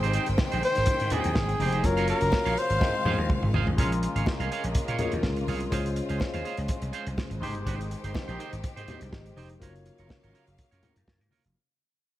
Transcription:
Already playing: G#1 D#3 G#3 C4 D#4 G#4 C5 G5
0.03 D#4 G4 C5, closed hi-hat
0.13 D#4 G4 C5, closed hi-hat, muted conga
0.26 G1, muted clean electric guitar stroke, closed hi-hat
0.38 muted clean electric guitar stroke, kick, snare, high conga
0.52 A#1 D#4 G4 C5, closed hi-hat
0.63 C5, closed hi-hat
0.75 G#1, muted clean electric guitar stroke, snare, closed hi-hat
0.86 muted clean electric guitar stroke, muted slap bass stroke, kick, closed hi-hat, muted conga
1.00 G#2, muted clean electric guitar stroke, closed hi-hat
1.10 D#4 G4 G#4 C5, closed hi-hat, low conga
1.24 D#2, muted clean electric guitar stroke, closed hi-hat
1.35 G#1, muted clean electric guitar stroke, kick, snare, high conga
1.49 muted clean electric guitar stroke, closed hi-hat
1.60 F1 D#4 G4 C5, open hi-hat, high conga
1.72 D#4 G4 C5, closed hi-hat
1.83 F#1 C#3 F#3 A#3 C#4 F4 F#4 A#4 C#5 F5, muted clean electric guitar stroke, kick, closed hi-hat, muted conga
1.97 A#4 C#5 F5, closed hi-hat
2.08 A#4 C#5 F5, closed hi-hat
2.21 F#1, closed hi-hat
2.32 muted clean electric guitar stroke, kick, snare, high conga
2.46 A#1 A#4 C#5 F5, closed hi-hat
2.57 C5, muted clean electric guitar stroke, closed hi-hat
2.70 G#1, muted clean electric guitar stroke, closed hi-hat
2.80 G#2 D#3 G#3 C4 D#4 F4 A#4, muted clean electric guitar stroke, kick, snare, muted conga
2.89 C5
2.94 muted clean electric guitar stroke
3.05 G#2 G#4 C5 F5, high tom, low conga
3.18 D#2, muted clean electric guitar stroke
3.30 kick, mid tom, high conga
3.42 G1, muted clean electric guitar stroke, mid tom
3.54 G#1 G#4 C5 F5, floor tom, high conga
3.67 A1, muted clean electric guitar stroke, floor tom
3.77 A#1 C#3 G#3 A#3 C#4 F4 G#4 A#4 C#5 F5, kick, closed hi-hat, muted conga
3.92 muted clean electric guitar stroke, closed hi-hat
4.03 muted clean electric guitar stroke, closed hi-hat
4.16 G#1 G#4 C#5 F5, closed hi-hat
4.26 muted clean electric guitar stroke, kick, snare, high conga
4.40 C2 G#4 C#5 F5, closed hi-hat
4.51 G#4 C#5 F5, closed hi-hat
4.64 A#1, muted clean electric guitar stroke, closed hi-hat
4.75 muted slap bass stroke, muted clean electric guitar stroke, kick, closed hi-hat, muted conga
4.88 A#2 G#4 C#5 F5, closed hi-hat
4.98 G#3 C#4 F4 G#4 A#4 C#5 F5, closed hi-hat, low conga
5.12 D#2, muted clean electric guitar stroke, closed hi-hat
5.23 C#2, muted clean electric guitar stroke, kick, snare, high conga
5.36 muted clean electric guitar stroke, closed hi-hat
5.47 C2 G#4 C#5 F5, open hi-hat, high conga
5.60 muted clean electric guitar stroke, closed hi-hat
5.70 C#2 C#3 G#3 C#4 F4 G#4 C5 F5, kick, closed hi-hat, muted conga
5.85 muted clean electric guitar stroke, closed hi-hat
5.96 muted clean electric guitar stroke, closed hi-hat, muted conga
6.09 C#2 G#4 C5 F5, closed hi-hat
6.20 muted clean electric guitar stroke, kick, snare, high conga
6.34 D#2 G#4 C5 F5, closed hi-hat
6.45 G#4 C5 F5, closed hi-hat
6.57 C#2, muted clean electric guitar stroke, closed hi-hat
6.68 muted clean electric guitar stroke, kick, closed hi-hat, muted conga
6.82 C2, muted clean electric guitar stroke, closed hi-hat
6.93 G#4 C5 F5, closed hi-hat
7.07 C2, muted clean electric guitar stroke, closed hi-hat
7.17 kick, snare, high conga
7.30 G#1, muted clean electric guitar stroke, closed hi-hat
7.40 G#1 D#3 G#3 D#4 G4 C5, open hi-hat, high conga
7.55 G1, muted clean electric guitar stroke, closed hi-hat
7.66 G#1 D#4 G4 C5, kick, closed hi-hat, muted conga
7.80 muted clean electric guitar stroke, closed hi-hat
7.91 muted clean electric guitar stroke, closed hi-hat
8.04 G1 D#4 G4 C5, closed hi-hat
8.14 muted clean electric guitar stroke, kick, snare, high conga
8.28 A#1 D#4 G4 C5, closed hi-hat
8.39 D#4 G4 C5, closed hi-hat
8.53 G#1, muted clean electric guitar stroke, closed hi-hat
8.63 muted clean electric guitar stroke, muted slap bass stroke, kick, closed hi-hat, muted conga
8.76 G#2 D#4 G4 C5, closed hi-hat
8.88 D#4 G4 C5, closed hi-hat, low conga
9.01 C2, muted clean electric guitar stroke, closed hi-hat
9.12 G#1 G4 D#5, muted clean electric guitar stroke, kick, snare, high conga
9.25 muted clean electric guitar stroke, closed hi-hat
9.37 F1 D#4 G4 C5, open hi-hat, high conga
9.50 muted clean electric guitar stroke, closed hi-hat
9.59 F#1 C#3 F#3 A#3 F4 F#4 A#4 C5 C#5 F5, kick, closed hi-hat, muted conga
9.68 C#5
9.75 muted clean electric guitar stroke, closed hi-hat
9.86 muted clean electric guitar stroke, closed hi-hat, muted conga
9.98 F#1 F4 A#4 C#5, closed hi-hat
10.09 muted clean electric guitar stroke, kick, snare, high conga
10.23 G#1 F4 A#4 C#5, closed hi-hat
10.34 F4 A#4 C#5, closed hi-hat
10.47 F#1, muted clean electric guitar stroke, closed hi-hat
10.58 muted clean electric guitar stroke, kick, closed hi-hat, muted conga
10.71 F#2 F4 A#4 C#5, closed hi-hat
10.83 F4 A#4 C#5, closed hi-hat, low conga
10.96 F#2, muted clean electric guitar stroke, closed hi-hat
11.07 F#2, kick, snare, high conga
11.20 G#2, muted clean electric guitar stroke, closed hi-hat
11.31 F4 A#4 C#5, open hi-hat, high conga
11.44 F1, muted clean electric guitar stroke, closed hi-hat

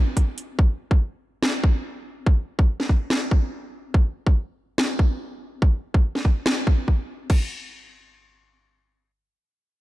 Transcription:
0.17 kick, closed hi-hat
0.38 closed hi-hat
0.59 kick
0.91 kick
1.43 snare
1.64 kick
2.26 kick
2.59 kick
2.80 snare
2.89 kick
3.10 snare
3.31 kick
3.94 kick
4.27 kick
4.78 snare
4.99 kick
5.62 kick
5.94 kick
6.15 snare
6.25 kick
6.46 snare
6.67 kick
6.88 kick
7.30 kick, crash

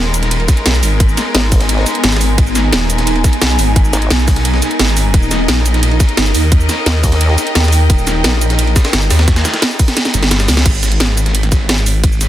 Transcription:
Already playing: D#1 G#3 B3 D#4 A#4
0.13 G#5, closed hi-hat, ride, shaker
0.23 snare, closed hi-hat
0.31 closed hi-hat, ride
0.40 ride
0.48 kick, snare, closed hi-hat, ride, shaker
0.57 closed hi-hat
0.66 B1, snare, closed hi-hat, ride
0.74 shaker
0.83 G#1, open hi-hat, ride, shaker
1.00 kick, closed hi-hat, ride
1.09 shaker
1.17 snare, closed hi-hat, ride, shaker
1.35 G#1, snare, closed hi-hat, ride
1.52 kick, closed hi-hat, open hi-hat, shaker
1.60 snare, closed hi-hat
1.69 closed hi-hat, ride
1.78 snare
1.86 snare, closed hi-hat, ride, shaker
1.95 closed hi-hat
2.04 G#1, snare, closed hi-hat, ride
2.12 snare, ride, shaker
2.16 snare, ride
2.21 open hi-hat, ride, shaker
2.38 G#1, kick, closed hi-hat, ride
2.47 shaker
2.55 snare, closed hi-hat, ride, shaker
2.73 D#1, snare, closed hi-hat, ride
2.90 closed hi-hat, ride, shaker
2.98 snare, closed hi-hat
3.07 closed hi-hat, ride
3.16 ride
3.24 kick, snare, closed hi-hat, ride, shaker
3.33 closed hi-hat
3.42 B1, snare, closed hi-hat, ride
3.50 shaker
3.59 G#1, open hi-hat, ride, shaker
3.76 kick, closed hi-hat, ride
3.85 shaker
3.93 G#1, snare, closed hi-hat, ride, shaker
4.02 closed hi-hat
4.10 B1, snare, closed hi-hat, ride
4.19 shaker
4.28 kick, snare, closed hi-hat, open hi-hat, shaker
4.36 snare, closed hi-hat
4.45 closed hi-hat, ride
4.54 snare
4.62 snare, closed hi-hat, ride, shaker
4.71 closed hi-hat
4.79 G#1, snare, closed hi-hat, ride
4.88 shaker
4.97 open hi-hat, ride, shaker
5.14 D#1 A#4 D#5, kick, closed hi-hat, ride
5.23 shaker
5.31 snare, closed hi-hat, ride, shaker
5.48 A#1, snare, closed hi-hat, ride
5.66 closed hi-hat, ride, shaker
5.72 G5, snare, closed hi-hat
5.83 closed hi-hat, ride
5.91 ride
6.00 kick, snare, closed hi-hat, ride, shaker
6.09 closed hi-hat
6.17 G1, snare, closed hi-hat, ride
6.26 shaker
6.35 D#2, open hi-hat, ride, shaker
6.52 kick, closed hi-hat, ride
6.60 shaker
6.69 snare, closed hi-hat, ride, shaker
6.86 D#2, snare, closed hi-hat, ride
7.04 kick, closed hi-hat, open hi-hat, shaker
7.12 snare, closed hi-hat
7.21 closed hi-hat, ride
7.29 snare
7.38 snare, closed hi-hat, ride, shaker
7.47 closed hi-hat
7.55 D#2, snare, closed hi-hat, ride
7.64 snare, ride, shaker
7.68 snare, ride
7.73 open hi-hat, ride, shaker
7.90 D#1, kick, closed hi-hat, ride
7.98 shaker
8.07 snare, closed hi-hat, ride, shaker
8.24 A#1, snare, closed hi-hat, ride
8.41 closed hi-hat, ride, shaker
8.50 snare, closed hi-hat
8.59 closed hi-hat, ride
8.67 ride
8.76 kick, snare, closed hi-hat, ride, shaker
8.85 snare, closed hi-hat, ride
8.93 G1, snare, closed hi-hat, ride
9.02 shaker
9.10 D#2, snare, open hi-hat, ride, shaker
9.19 snare, ride
9.28 kick, snare, closed hi-hat, ride
9.36 snare, ride, shaker
9.45 snare, closed hi-hat, ride, shaker
9.54 snare, closed hi-hat, ride
9.62 snare, closed hi-hat, ride
9.71 shaker
9.79 kick, closed hi-hat, open hi-hat, shaker
9.88 snare, closed hi-hat
9.97 snare, closed hi-hat, ride
10.05 snare, closed hi-hat, shaker
10.14 G1, snare, closed hi-hat, ride, shaker
10.23 snare, closed hi-hat
10.31 snare, closed hi-hat, ride
10.40 snare, ride, shaker
10.48 C#2, snare, open hi-hat, shaker
10.57 snare, ride
10.66 G#1, kick, closed hi-hat, ride, crash
10.74 shaker
10.83 snare, closed hi-hat, ride, shaker
10.92 closed hi-hat
11.00 snare, closed hi-hat, ride
11.17 closed hi-hat, ride, shaker
11.26 snare, closed hi-hat
11.35 closed hi-hat, ride
11.43 snare, closed hi-hat, ride
11.52 kick, snare, closed hi-hat, ride, shaker
11.69 snare, closed hi-hat, ride
11.78 shaker
11.86 open hi-hat, ride, shaker
12.04 G#1, kick, closed hi-hat, ride
12.12 shaker
12.21 snare, closed hi-hat, ride, shaker

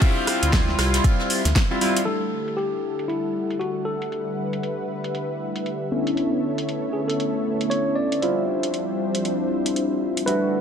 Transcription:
0.01 G3 C4 E4 F4, kick, closed hi-hat, open hi-hat
0.27 cross-stick, open hi-hat, ride
0.43 D2, closed hi-hat
0.53 kick, snare, closed hi-hat, ride
0.69 snare
0.78 C2, cross-stick, snare, open hi-hat, ride
0.94 snare, closed hi-hat, ride
1.04 kick, closed hi-hat, ride
1.19 snare
1.30 open hi-hat, ride
1.45 D2, snare, closed hi-hat, ride
1.56 kick, snare, closed hi-hat, ride
1.71 G3 C4 E4 F4, snare
1.81 G3 C4 E4 F4, open hi-hat, ride
1.97 closed hi-hat
2.05 D3 G3 A3 D4 E4 G4 A4 E5 F#5, closed hi-hat
2.48 closed hi-hat
2.57 G4, closed hi-hat
2.99 closed hi-hat
3.08 E4, closed hi-hat
3.51 closed hi-hat
3.60 F#4, closed hi-hat
3.85 A4
4.02 closed hi-hat
4.12 B4, closed hi-hat
4.53 closed hi-hat
4.63 closed hi-hat
5.04 closed hi-hat
5.15 closed hi-hat
5.56 closed hi-hat
5.66 closed hi-hat
5.91 A3 B3 C#4 D4 E4 A4 C#5
6.07 closed hi-hat
6.17 closed hi-hat
6.58 closed hi-hat
6.69 closed hi-hat
6.93 G#4
7.08 A4, closed hi-hat
7.20 closed hi-hat
7.61 closed hi-hat
7.70 C#5, closed hi-hat
7.96 D5
8.12 closed hi-hat
8.22 F3 G3 C4 D4 E4 F4 C5, closed hi-hat
8.63 closed hi-hat
8.74 closed hi-hat
9.15 closed hi-hat
9.25 closed hi-hat
9.66 closed hi-hat
9.76 closed hi-hat
10.17 closed hi-hat
10.26 D3 G3 A3 D4 E4 F#4 A4 B4, closed hi-hat

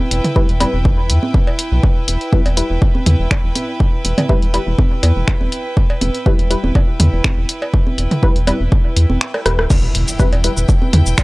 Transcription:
Already playing: E4 B4 G5
0.11 E1, closed hi-hat
0.24 closed hi-hat, mid tom
0.36 G3 E4 B4, kick
0.49 E1, closed hi-hat
0.60 G3 E4 B4, closed hi-hat, cowbell, high conga
0.74 E1
0.85 kick
1.10 E2, closed hi-hat
1.23 high conga
1.34 kick
1.47 cowbell
1.59 closed hi-hat
1.72 B1
1.83 kick
2.08 E1, closed hi-hat
2.21 closed hi-hat
2.33 G3 E4 B4, kick, high conga
2.46 E1, closed hi-hat, cowbell
2.57 G3 E4 B4, closed hi-hat
2.70 E1
2.82 kick
2.95 high conga
3.06 E2, closed hi-hat, mid tom
3.19 E1
3.31 finger snap, kick, cowbell
3.44 E1
3.55 closed hi-hat, high conga
3.80 kick
4.05 E1, closed hi-hat
4.18 closed hi-hat, mid tom, cowbell, high conga
4.29 G3 E4 B4, kick
4.42 E1, closed hi-hat
4.54 G3 E4 B4, closed hi-hat
4.67 E1
4.78 kick, high conga
5.03 E2, closed hi-hat, cowbell
5.16 E1
5.28 finger snap, kick
5.41 E1, high conga
5.52 closed hi-hat
5.77 kick
5.90 cowbell
6.01 E1, closed hi-hat, high conga
6.14 closed hi-hat
6.26 G3 E4 B4, kick
6.39 E1, closed hi-hat
6.50 G3 E4 B4, closed hi-hat
6.64 E1, high conga
6.75 kick, cowbell
7.00 E2, closed hi-hat, mid tom
7.13 E1
7.24 finger snap, kick, high conga
7.38 E1
7.49 closed hi-hat
7.62 cowbell
7.74 kick
7.87 high conga
7.98 E1, closed hi-hat
8.11 closed hi-hat, mid tom
8.23 G3 E4 B4, kick
8.36 E1, closed hi-hat
8.47 G3 E4 B4, closed hi-hat, cowbell, high conga
8.60 E1
8.72 kick
8.96 E2, closed hi-hat
9.10 E1, high conga
9.21 finger snap
9.34 cross-stick, cowbell
9.46 E1 G3 E4 B4, cross-stick, closed hi-hat
9.59 D1, cross-stick
9.70 E4, kick, crash, impact, shaker
9.95 E1, closed hi-hat
10.04 G5
10.08 B4, closed hi-hat, shaker
10.19 G3 E4 B4, kick, high conga, shaker
10.33 E1, closed hi-hat, cowbell
10.44 G3 E4 B4, closed hi-hat
10.57 E1, shaker
10.69 kick, shaker
10.82 high conga
10.93 E2, closed hi-hat, mid tom
11.06 E1, shaker
11.18 finger snap, kick, cowbell, shaker

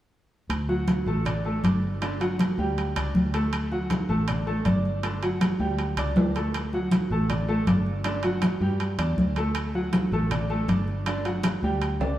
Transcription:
0.49 D2, high conga, high timbale
0.69 F#3 F#4 F#5, high conga
0.88 high conga, high timbale
1.06 A1 A3 A4 A5, high conga
1.25 D4 D5 D6, high conga, low conga, high timbale
1.44 A3 A4 A5, high conga
1.63 G1 D4 D5 D6, high conga, high timbale
1.83 high conga
2.01 D3 D4 D5, high conga, high timbale
2.20 F#3 F#4 F#5, high conga, high timbale
2.39 high conga, high timbale
2.58 D2 G3 G4 G5, high conga
2.77 high conga, high timbale
2.96 C#2 D4 D5 D6, high conga, high timbale
3.14 D2, high conga
3.34 A3 A4 A5, high conga, high timbale
3.53 high conga, high timbale
3.72 F#3 F#4 F#5, high conga
3.90 high conga, high timbale
4.09 A1 A3 A4 A5, high conga
4.28 D4 D5 D6, high conga, low conga, high timbale
4.47 A3 A4 A5, high conga
4.65 G1 D4 D5 D6, high conga, high timbale
4.85 high conga
5.03 D3 D4 D5, high conga, high timbale
5.23 F#3 F#4 F#5, high conga, high timbale
5.41 high conga, high timbale
5.59 D2 G3 G4 G5, high conga
5.79 high conga, high timbale
5.97 C#2 D4 D5 D6, high conga, high timbale
6.16 D2, high conga, low timbale
6.35 A3 A4 A5, high conga, high timbale
6.54 high conga, high timbale
6.73 F#3 F#4 F#5, high conga
6.92 high conga, high timbale
7.10 A1 A3 A4 A5, high conga
7.30 D4 D5 D6, high conga, low conga, high timbale
7.48 A3 A4 A5, high conga
7.67 G1 D4 D5 D6, high conga, high timbale
7.86 high conga
8.04 D3 D4 D5, high conga, high timbale
8.23 F#3 F#4 F#5, high conga, high timbale
8.42 high conga, high timbale
8.60 G2 G3 G4 G5, high conga
8.80 high conga, high timbale
8.98 E2 D4 D5 D6, high conga, high timbale
9.17 D2, high conga
9.36 A3 A4 A5, high conga, high timbale
9.55 high conga, high timbale
9.74 F#3 F#4 F#5, high conga
9.93 high conga, high timbale
10.12 A1 A3 A4 A5, high conga
10.31 D4 D5 D6, high conga, low conga, high timbale
10.50 A3 A4 A5, high conga
10.68 G1 D4 D5 D6, high conga, high timbale
10.88 high conga
11.06 D3 D4 D5, high conga, high timbale
11.25 F#3 F#4 F#5, high conga, high timbale
11.43 high conga, high timbale
11.62 D2 G3 G4 G5, high conga
11.82 high conga, high timbale
12.00 C#2 D4 D5 D6, high conga, high timbale

